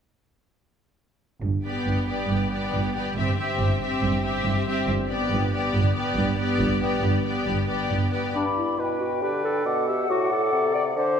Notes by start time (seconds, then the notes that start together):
1.44 G1 G2
1.65 B3 G4 D5
1.87 G1 G2
2.08 B3 G4 D5
2.30 G1 G2
2.52 B3 G4 D5
2.73 G1 G2
2.94 B3 G4 D5
3.17 G1 G2 C4 G4 E5
3.38 C4 G4 E5
3.60 G1 G2
3.82 C4 G4 E5
4.03 G1 G2
4.24 C4 G4 E5
4.46 G1 G2
4.67 C4 G4 E5
4.89 G1 G2
5.09 B3 G4 D5
5.32 G1 G2
5.53 B3 G4 D5
5.75 G1 G2
5.96 B3 G4 D5
6.17 G1 G2
6.39 B3 G4 D5
6.60 G1 G2
6.81 B3 G4 D5
7.03 G1 G2
7.25 B3 G4 D5
7.47 G1 G2
7.67 B3 G4 D5
7.90 G1 G2
8.12 B3 G4 D5
8.34 G2 D4 D5 B5
8.56 E4
8.78 B2 B4 G5
9.00 F#4
9.21 D3 G4 B4
9.44 A4
9.65 B2 D5 F#5
9.88 G4 E5
10.09 A2 F#4 D5
10.32 A4
10.52 C3
10.74 D5
10.96 D3 C5 D5 F#5
11.16 A5